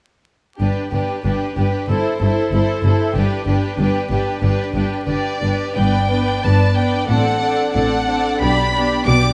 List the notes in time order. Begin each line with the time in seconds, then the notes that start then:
0.60 G1 G2 D4 G4 B4
0.91 G1 G2 D4 G4 B4
1.24 G1 G2 D4 G4 B4
1.56 G1 G2 D4 G4 B4
1.89 G1 G2 E4 A4 C5
2.21 G1 G2 E4 A4 C5
2.52 G1 G2 E4 A4 C5
2.83 G1 G2 E4 A4 C5
3.15 G1 G2 D4 G4 B4
3.47 G1 G2 D4 G4 B4
3.78 G1 G2 D4 G4 B4
4.10 G1 G2 D4 G4 B4
4.42 G1 G2 D4 G4 B4
4.75 G1 G2 D4 G4 B4
5.07 G1 G2 D4 G4 B4 D5
5.42 G1 G2 D4 G4 B4
5.77 G1 G2 B3 D4 B4 D5 G5
6.10 B3 D4 B4 D5
6.43 G1 G2 B3 D4 B4 D5 A5
6.77 B3 D4 B4 D5 G5
7.08 A1 A2 C4 D4 A4 D5 F#5
7.40 C4 D4 A4 D5
7.73 A1 A2 C4 D4 A4 D5 F#5
8.07 C4 D4 A4 D5
8.41 B1 B2 B3 D4 G4 D5 B5
8.74 B3 D4 G4 D5
9.05 B1 B2 B3 D4 G4 D5 D6